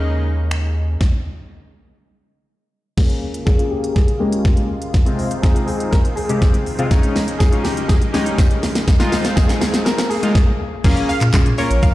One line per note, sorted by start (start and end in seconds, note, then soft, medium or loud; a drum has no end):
0.00 0.97 D#2 medium
0.00 0.99 C#3 medium
0.00 0.99 G#3 medium
0.00 0.99 A#3 medium
0.00 0.97 C#4 medium
0.00 0.97 D#4 medium
0.00 0.99 D#4 medium
0.00 0.97 G#4 medium
0.51 finger snap loud
1.01 kick loud
1.01 snare medium
2.97 4.92 C#3 medium
2.97 8.84 G#3 medium
2.97 3.25 A#3 medium
2.97 4.92 A#3 medium
2.97 3.25 C#4 medium
2.97 6.87 F4 medium
2.97 3.25 G#4 loud
2.97 kick loud
2.97 snare medium
2.97 crash loud
2.97 riser medium
3.10 closed hi-hat soft
3.34 closed hi-hat medium
3.45 3.53 A#3 medium
3.45 3.54 C#4 medium
3.45 3.59 G#4 loud
3.45 3.54 G#4 medium
3.45 kick loud
3.45 snare medium
3.57 3.93 A#3 medium
3.57 3.93 C#4 medium
3.57 3.62 F4 medium
3.57 3.93 G#4 medium
3.57 closed hi-hat medium
3.70 3.96 G4 loud
3.84 closed hi-hat medium
3.94 4.21 G#4 loud
3.94 kick loud
3.94 snare medium
4.08 closed hi-hat soft
4.19 4.69 G#3 loud
4.19 4.68 A#3 medium
4.19 4.68 C#4 medium
4.19 4.65 G4 loud
4.33 closed hi-hat medium
4.45 kick loud
4.45 snare medium
4.57 closed hi-hat medium
4.82 closed hi-hat medium
4.94 6.89 C2 medium
4.94 6.89 D#3 medium
4.94 6.89 C4 medium
4.94 kick loud
4.94 snare medium
4.94 shaker medium
5.06 5.27 C3 medium
5.06 5.27 G#3 medium
5.06 5.27 C4 medium
5.06 5.27 F4 loud
5.06 closed hi-hat soft
5.06 shaker soft
5.19 open hi-hat medium
5.19 shaker medium
5.31 closed hi-hat medium
5.31 shaker medium
5.42 5.91 C3 medium
5.42 5.92 G#3 medium
5.42 5.92 C4 medium
5.42 5.92 D#4 medium
5.42 5.55 G#4 medium
5.42 kick loud
5.42 snare medium
5.42 shaker medium
5.54 5.68 F4 medium
5.54 closed hi-hat medium
5.54 shaker medium
5.66 5.93 G#4 loud
5.66 open hi-hat medium
5.66 shaker medium
5.80 closed hi-hat medium
5.80 shaker medium
5.91 5.97 A#4 loud
5.91 kick loud
5.91 snare medium
5.91 shaker medium
6.05 closed hi-hat soft
6.05 shaker soft
6.16 6.62 G#4 loud
6.16 open hi-hat medium
6.16 shaker medium
6.29 6.57 C3 medium
6.29 6.57 G#3 medium
6.29 6.57 C4 medium
6.29 6.57 G4 medium
6.29 closed hi-hat medium
6.29 shaker medium
6.42 kick loud
6.42 snare medium
6.42 shaker medium
6.54 closed hi-hat medium
6.54 shaker medium
6.66 open hi-hat medium
6.66 shaker medium
6.79 6.86 C3 loud
6.79 6.86 G#3 medium
6.79 6.86 C4 medium
6.79 6.86 F4 loud
6.79 closed hi-hat medium
6.79 shaker medium
6.91 8.86 C#3 medium
6.91 7.18 G#3 medium
6.91 8.86 A#3 medium
6.91 7.19 C#4 medium
6.91 8.86 D#4 medium
6.91 7.19 D#4 loud
6.91 kick loud
6.91 snare medium
6.91 tambourine medium
6.91 shaker medium
7.03 closed hi-hat soft
7.03 shaker soft
7.16 snare medium
7.16 open hi-hat medium
7.16 tambourine medium
7.16 shaker medium
7.28 closed hi-hat medium
7.28 shaker medium
7.39 7.47 G#3 medium
7.39 7.47 C#4 medium
7.39 7.47 D#4 medium
7.39 7.52 G#4 loud
7.39 kick loud
7.39 snare medium
7.39 tambourine medium
7.39 shaker medium
7.51 7.87 G#3 medium
7.51 7.87 C#4 medium
7.51 7.87 D#4 medium
7.51 7.63 F4 medium
7.51 closed hi-hat medium
7.51 shaker medium
7.63 7.89 G4 loud
7.63 snare medium
7.63 open hi-hat medium
7.63 tambourine medium
7.63 shaker medium
7.77 closed hi-hat medium
7.77 shaker medium
7.88 7.94 G#4 loud
7.88 kick loud
7.88 snare loud
7.88 tambourine soft
7.88 shaker medium
8.02 closed hi-hat medium
8.02 shaker soft
8.13 8.62 G#3 medium
8.13 8.62 C#4 medium
8.13 8.62 D#4 loud
8.13 8.59 G4 loud
8.13 snare loud
8.13 open hi-hat medium
8.13 tambourine medium
8.13 shaker medium
8.26 closed hi-hat medium
8.26 shaker medium
8.38 kick loud
8.38 snare loud
8.38 tambourine loud
8.38 shaker medium
8.51 closed hi-hat medium
8.51 shaker medium
8.63 snare loud
8.63 open hi-hat medium
8.63 tambourine soft
8.63 shaker medium
8.75 snare loud
8.75 closed hi-hat medium
8.75 shaker medium
8.88 10.34 D#3 medium
8.88 10.34 G#3 medium
8.88 10.34 C4 medium
8.88 10.34 F4 medium
8.88 kick loud
8.88 snare loud
8.88 tambourine medium
8.88 shaker medium
9.00 9.20 G#3 medium
9.00 9.21 D#4 medium
9.00 9.21 F4 loud
9.00 snare loud
9.00 closed hi-hat soft
9.00 shaker soft
9.12 snare loud
9.12 open hi-hat medium
9.12 tambourine medium
9.12 shaker medium
9.25 snare loud
9.25 closed hi-hat medium
9.25 shaker medium
9.36 9.85 G#3 medium
9.36 9.85 D#4 medium
9.36 9.49 G#4 medium
9.36 9.85 G#4 medium
9.36 kick loud
9.36 snare loud
9.36 tambourine loud
9.36 shaker medium
9.48 9.61 F4 medium
9.48 snare loud
9.48 closed hi-hat medium
9.48 shaker medium
9.60 9.86 G#4 loud
9.60 snare loud
9.60 open hi-hat medium
9.60 tambourine medium
9.60 shaker medium
9.74 snare loud
9.74 closed hi-hat medium
9.74 shaker medium
9.85 10.11 A#4 loud
9.85 snare loud
9.85 tambourine medium
9.85 shaker medium
9.98 snare loud
9.98 closed hi-hat medium
9.98 shaker soft
10.09 10.56 G#4 loud
10.09 open hi-hat medium
10.09 tambourine medium
10.09 shaker medium
10.23 10.35 G#3 medium
10.23 10.35 D#4 medium
10.23 10.35 F4 medium
10.23 closed hi-hat medium
10.23 tambourine soft
10.23 shaker medium
10.35 kick loud
10.35 snare loud
10.84 11.04 A#1 loud
10.84 11.12 A#3 loud
10.84 11.12 C#4 medium
10.84 11.12 F4 medium
10.84 11.12 G#4 loud
10.84 kick loud
10.84 crash loud
10.84 tambourine medium
10.84 shaker medium
10.97 closed hi-hat soft
10.97 shaker soft
11.09 11.19 F5 medium
11.09 open hi-hat medium
11.09 tambourine medium
11.09 shaker medium
11.21 11.31 A#2 loud
11.21 clap medium
11.21 closed hi-hat medium
11.21 shaker medium
11.33 11.53 A#2 loud
11.33 11.47 A#3 medium
11.33 11.47 C#4 medium
11.33 11.47 F4 medium
11.33 11.48 G#4 medium
11.33 kick loud
11.33 snare loud
11.33 clap loud
11.33 tambourine medium
11.33 shaker medium
11.46 closed hi-hat medium
11.46 shaker medium
11.58 11.92 A#3 medium
11.58 11.93 C#4 medium
11.58 11.93 F4 medium
11.58 11.93 A#4 medium
11.58 11.78 C#5 medium
11.58 open hi-hat medium
11.58 tambourine medium
11.58 shaker medium
11.70 11.80 A#1 loud
11.70 closed hi-hat medium
11.70 tambourine soft
11.70 shaker medium
11.83 11.94 A#1 loud
11.83 11.93 F5 medium
11.83 kick loud
11.83 tambourine medium
11.83 shaker medium